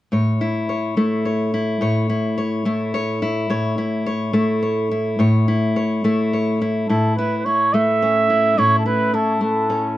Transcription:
0.12 A2 C#5
0.41 E4
0.69 C#5
0.97 A3 E4
1.25 C#5
1.54 E4
1.81 A2 C#5
2.10 E4
2.38 C#5
2.65 A3 E4
2.94 C#5
3.22 E4
3.50 A2 C#5
3.78 E4
4.06 C#5
4.33 A3 E4
4.63 C#5
4.91 E4
5.19 A2 C#5
5.48 E4
5.76 C#5
6.04 A3 E4
6.33 C#5
6.62 E4
6.88 A2 E4 A4
7.16 E4 B4
7.38 B4
7.45 E4 C#5
7.74 A3 E5
8.02 C#4
8.30 E4
8.58 A2 E4 C#5
8.79 A4
8.86 E4 B4
9.14 E4 A4
9.41 A3 A4
9.70 C#4

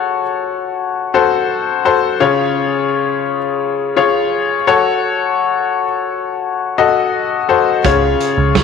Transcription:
Already playing: F#4 A4 C#5
1.14 F#4 A4 C5
1.85 F#4 A4 C5
2.20 C#3 F4 G#4 C#5
3.96 F4 G#4 C#5
4.67 F#4 A4 C#5
6.78 F#4 A4 D#5
7.49 F#4 A4 C5
7.84 C#2 C#3 F4 G#4 C#5, kick, closed hi-hat
8.20 closed hi-hat
8.38 C#2
8.55 C#2, kick, snare, closed hi-hat

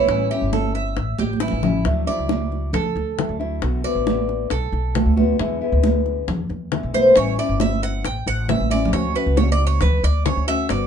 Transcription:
Already playing: E4 C#5
0.08 A1 E3 G3 C#4 E4, high bongo
0.30 G3 C#4 E4 G4, high conga
0.41 G1
0.53 A4, high bongo, high conga
0.75 E5, high bongo, high conga
0.96 A1, muted nylon-string guitar stroke, high bongo, high conga
1.18 A1 G4, high bongo, high conga
1.33 high conga
1.40 E3 G3 C#4 E4, high bongo
1.48 low conga
1.53 A1
1.62 G3 C#4 E4, low bongo, low conga
1.85 D2 D3 F#3 A3 D4 E4, high bongo, high conga
2.06 F#3 A3 D4 E4 D5, high conga
2.19 C#2
2.29 high bongo, high conga
2.52 high bongo, high conga
2.73 D2 A4, muted nylon-string guitar stroke, high bongo, high conga, low conga
2.96 D2, high bongo, high conga
3.18 F#3 A3 D4 E4, high bongo, low bongo, high conga
3.29 D2
3.39 F#3 A3 D4 E4, high bongo
3.62 B1 B2 D3 A3 B3 F#4, high bongo, high conga
3.84 D3 A3 B3 F#4 D5, high conga
3.95 A1
4.07 high bongo, high conga
4.29 high bongo, high conga
4.50 B1 A4, muted nylon-string guitar stroke, high bongo, high conga
4.72 B1, high bongo, high conga
4.94 D3 A3 B3 F#4, high bongo, low bongo, high conga
5.06 D2
5.16 D3 A3 B3 F#4, high bongo, high conga
5.38 E2 B2 D3 G#3 B3 E4, high bongo
5.61 D3 G#3 B3 E4, high conga
5.72 D2
5.83 high bongo, high conga
6.06 high bongo, high conga
6.28 E2, muted nylon-string guitar stroke, high bongo, high conga, low conga
6.50 E2, high bongo, high conga
6.71 D3 G#3 B3 E4, high bongo, low bongo, high conga
6.83 B1
6.93 D3 G#3 B3 E4 C5, high bongo, high conga
7.16 A1 E3 G3 C#4 E4 C#5, high bongo, high conga
7.38 G3 C#4 E4 D5, high conga
7.49 G1
7.60 E5, high bongo, high conga
7.82 F#5, high bongo, high conga
8.04 A1 G5, muted nylon-string guitar stroke, high bongo, high conga
8.26 A1 F#5, high bongo, high conga
8.48 E3 G3 C#4 E4 E5, high bongo, low bongo, high conga
8.60 A1
8.70 G3 C#4 E4 D5, high bongo, high conga
8.85 low conga
8.92 D2 D3 A3 C#4 F#4 C#5, high bongo, high conga
9.14 A3 C#4 F#4 B4, high conga
9.26 C#2
9.37 C#5, high bongo, high conga
9.52 D5
9.59 high bongo, high conga
9.67 C#5
9.81 D2 B4, muted nylon-string guitar stroke, high bongo, high conga, low conga
10.03 D2 D5, high bongo, high conga
10.25 D3 A3 C#4 F#4 C#5, high bongo, low bongo, high conga
10.37 D2
10.47 A3 C#4 F#4 E5, high bongo
10.69 G1 G3 B3 F#4 D5, high bongo, high conga

